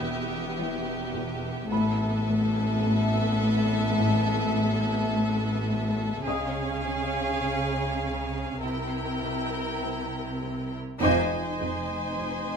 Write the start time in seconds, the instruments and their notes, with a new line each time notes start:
Already playing: double bass section E1, cello section E2, viola section B3, violin section G4 E5 D#6 G6
0.03 cello section E2
0.59 cello section E3
1.16 cello section E2
1.71 double bass section A1, cello section A2, viola section B3, violin section A4 E5, felt piano B5
2.29 cello section A2
2.86 cello section A2
3.42 cello section A2
3.99 cello section A2
4.56 cello section A2
5.13 cello section A3
5.69 cello section A2
6.26 double bass section C#2, cello section C#3, viola section C#4, violin section G#4 F5, felt piano D#5 D#6
6.85 cello section C#3
7.44 cello section C#3
8.03 cello section C#3
8.62 double bass section C2, cello section C3, viola section E4, violin section A#4 G5
9.23 cello section C3
9.83 cello section C4
10.42 cello section C3
11.00 double bass section F1, cello section F2, viola section D#4, violin section C5 G#5 C6 D#6
11.60 cello section F2
12.17 cello section F2